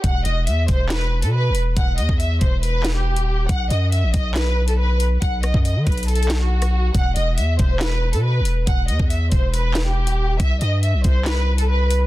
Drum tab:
HH |x-----------x-----------x-----------x-----------x-----------------x-----------------x-----------|x-----------x-----------x-----------x-----------x-----------x-----------------x-----------------|x-----------x-----------x-----------x-----------x-----------------x-----------------x-----------|x-----------x-----------x-----------x--x--x--x--x---x---x---x-----------------x-----------------|
CP |------------------------------------------------x-----------------------------------------------|------------------------------------------------------------x-----------------------------------|------------------------------------------------x-----------------------------------------------|------------------------------------------------------------x-----------------------------------|
SD |------------------------------------------------o-----------------------------------------------|------------------------------------------------------------o-----------------------------------|------------------------------------------------o-----------------------------------------------|------------r-----------------------------------------------o-----------------r-----------------|
BD |o-----------------------------------o-----------------------------------------------------------|o-----------------o-----------------o-----------------------------------------------------------|o-----------------------------------o-----------------------------------------------------------|o-----------------o-----------------o-----------------------------------------------------------|

HH |x-----------x-----------x-----------x-----------x-----------------x-----------------x-----------|x-----------x-----------x-----------x-----------x-----------x-----------------x-----------------|x-----------x-----------x-----------x-----------x-----------------x-----------------x-----------|
CP |------------------------------------------------x-----------------------------------------------|------------------------------------------------------------x-----------------------------------|------------------------------------------------x-----------------------------------------------|
SD |------------------------------------------------o-----------------------------------------------|------------------------------------------------------------o-----------------------------------|------------------------------------------------o-----------------------------------------------|
BD |o-----------------------------------o-----------------------------------------------------------|o-----------------o-----------------o-----------------------------------------------------------|o-----------------------------------o-----------------------------------------------------------|